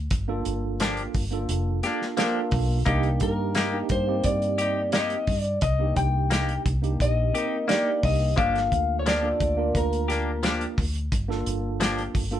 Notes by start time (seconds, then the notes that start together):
0.11 G1, kick, closed hi-hat
0.28 A#3 D4 F4 A4
0.45 G1, closed hi-hat
0.80 F3 A#3 D4 G4, snare, closed hi-hat
0.97 closed hi-hat
1.14 G1, kick, open hi-hat
1.31 A#3 D4 F4 A4, closed hi-hat
1.49 F1, closed hi-hat
1.83 A#3 D4 F4 G4 A4, snare, closed hi-hat
1.87 A#3
2.02 snare
2.17 F3 A#3 D4 F4 G4 A4, snare, closed hi-hat
2.51 B1, kick, open hi-hat
2.86 C2 A#3 D4 D#4 G4, kick, closed hi-hat
3.03 closed hi-hat
3.20 G2 A#4, kick, closed hi-hat
3.55 A#3 D#4 G4, snare, closed hi-hat
3.72 A#3 D4 D#4 G4
3.89 G2 C5, kick, closed hi-hat
4.07 A#3 C4 D#4 G4
4.24 G2 D5, kick, closed hi-hat
4.42 closed hi-hat
4.58 D#4 G4, closed hi-hat
4.92 A#3 D#4 G4 D#5, snare, closed hi-hat
5.10 closed hi-hat
5.27 G2, kick, open hi-hat
5.39 D5
5.44 closed hi-hat
5.61 C2 D#5, kick, closed hi-hat
5.79 A#3 D4 D#4 G4
5.96 C2 G5, kick, closed hi-hat
6.30 A#3 D#4 G4, snare, closed hi-hat
6.49 closed hi-hat
6.66 C2, kick, closed hi-hat
6.82 A#3 D4 D#4 G4, closed hi-hat
7.00 A#1 D#5, kick, closed hi-hat
7.33 A#3 C4 D#4 G4 A#4, closed hi-hat
7.38 D#4
7.67 A#3 D4 D#4 G4 D5, snare, closed hi-hat
8.03 C2 D#5, kick, open hi-hat
8.36 G1 F3 A#3 D4 F4 G4 A4 F5, kick, closed hi-hat
8.55 snare, closed hi-hat
8.72 D2, kick, closed hi-hat
8.99 C#5
9.06 F3 A#3 D4 G4 D5, snare, closed hi-hat
9.22 A#3 D4 F4 A4
9.40 D2, kick, closed hi-hat
9.57 A#3 D4 F4 A#4
9.75 D2 A#4, kick, closed hi-hat
9.93 closed hi-hat
10.08 A#3 D4 G4, snare, closed hi-hat
10.43 F3 A#3 D4 G4, snare, closed hi-hat
10.61 closed hi-hat
10.78 D2, kick, open hi-hat
10.95 closed hi-hat
11.12 G1, kick, closed hi-hat
11.28 A#3 D4 F4 A4, snare
11.46 G1, closed hi-hat
11.80 F3 A#3 D4 G4, snare, closed hi-hat
11.98 closed hi-hat
12.15 G1, kick, open hi-hat
12.31 A#3 D4 F4 A4, closed hi-hat